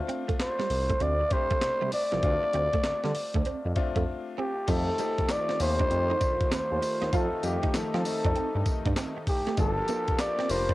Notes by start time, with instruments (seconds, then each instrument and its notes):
Already playing: grand piano A3 C4 D4 F4
0.08 clean electric guitar C4, closed hi-hat
0.28 analog synth bass C2, clean electric guitar A3, kick, closed hi-hat
0.40 muted trumpet C5, snare, clap, closed hi-hat
0.59 clean electric guitar G3, snare
0.70 analog synth bass C2, muted clean electric guitar stroke, open hi-hat
0.89 clean electric guitar A3, kick, closed hi-hat
1.00 analog synth bass D2, clean electric guitar C4, muted trumpet D5, closed hi-hat
1.20 muted clean electric guitar stroke
1.31 grand piano A3 C4 D4 G4, muted trumpet C5, kick, closed hi-hat
1.50 clean electric guitar A3, kick, closed hi-hat
1.61 analog synth bass C2, snare, clap, closed hi-hat
1.81 analog synth bass C2, clean electric guitar G3
1.92 muted trumpet D5, muted clean electric guitar stroke, open hi-hat
2.12 analog synth bass C2, clean electric guitar F3, snare, closed hi-hat
2.23 analog synth bass D2, grand piano A3 C4 D4 F4, kick, closed hi-hat
2.43 muted clean electric guitar stroke
2.53 analog synth bass D2, clean electric guitar C4, closed hi-hat
2.73 clean electric guitar A3, kick, closed hi-hat
2.84 analog synth bass D3, snare, clap, closed hi-hat
3.04 analog synth bass D3, clean electric guitar G3, snare
3.15 muted clean electric guitar stroke, open hi-hat
3.34 analog synth bass D2, clean electric guitar A3, kick, closed hi-hat
3.45 clean electric guitar C4, closed hi-hat
3.65 analog synth bass F2, muted clean electric guitar stroke
3.75 grand piano A3 C4 D4 F4, kick, closed hi-hat
3.96 analog synth bass F2, clean electric guitar A3, kick, closed hi-hat
4.38 clean electric guitar C4, muted trumpet G4
4.67 analog synth bass F2, analog synth pad D#3 A3 F4, clean electric guitar F3, grand piano A3 C4 D#4 G4, muted trumpet A4, kick, closed hi-hat, crash, tambourine
4.88 muted clean electric guitar stroke
4.98 grand piano A3 C4 D#4 G4, clean electric guitar A3, closed hi-hat, tambourine
5.18 analog synth bass D#2, kick, closed hi-hat
5.29 muted trumpet D5, snare, clap, closed hi-hat, tambourine
5.49 clean electric guitar C4, snare
5.59 analog synth bass D#2, grand piano A3 C4 D#4 G4, muted trumpet C5, muted clean electric guitar stroke, open hi-hat, tambourine
5.79 clean electric guitar D4, kick, closed hi-hat
5.91 analog synth bass F2, muted clean electric guitar stroke, closed hi-hat
6.10 clean electric guitar D#4
6.21 clean electric guitar D4, kick, closed hi-hat, tambourine
6.41 kick, closed hi-hat
6.51 analog synth bass D#2, clean electric guitar C4, muted trumpet C5, snare, clap, closed hi-hat, tambourine
6.72 analog synth bass D#2
6.82 muted clean electric guitar stroke, open hi-hat, tambourine
7.02 analog synth bass D#2, clean electric guitar D#4, snare, closed hi-hat
7.13 analog synth bass F2, grand piano A3 C4 D#4 F4, analog synth pad D#4, clean electric guitar F4, muted trumpet A4, kick, closed hi-hat, tambourine
7.43 analog synth bass F2, grand piano A3 C4 D#4 G4, muted trumpet G4, muted clean electric guitar stroke, closed hi-hat, tambourine
7.63 clean electric guitar D#4, kick, closed hi-hat
7.74 analog synth bass F3, muted trumpet A4, snare, clap, closed hi-hat, tambourine
7.94 analog synth bass F3, clean electric guitar C4, snare
8.05 grand piano A3 C4 D#4 A4, muted clean electric guitar stroke, open hi-hat, tambourine
8.24 analog synth bass F2, clean electric guitar D4, kick, closed hi-hat
8.35 clean electric guitar C4, closed hi-hat
8.55 analog synth bass G2, muted clean electric guitar stroke
8.66 kick, closed hi-hat, tambourine
8.85 analog synth bass G2, clean electric guitar D4, kick, closed hi-hat
8.96 clean electric guitar C4, snare, clap, closed hi-hat, tambourine
9.17 muted clean electric guitar stroke
9.27 muted trumpet G4, kick, open hi-hat, tambourine
9.47 clean electric guitar A3, snare, closed hi-hat
9.57 analog synth bass G1, analog synth pad F3 A#3 G4, clean electric guitar G3, grand piano A#3 D4 F4 A4, muted trumpet A4, kick, closed hi-hat, tambourine
9.78 muted clean electric guitar stroke
9.88 grand piano A#3 D4 F4 A4, clean electric guitar A#3, closed hi-hat, tambourine
10.08 analog synth bass F1, kick, closed hi-hat
10.19 muted trumpet D5, snare, clap, closed hi-hat, tambourine
10.39 clean electric guitar C4, snare
10.49 analog synth bass F1, grand piano A#3 D4 F4 A#4, muted trumpet C5, muted clean electric guitar stroke, open hi-hat, tambourine
10.69 clean electric guitar D4, kick, closed hi-hat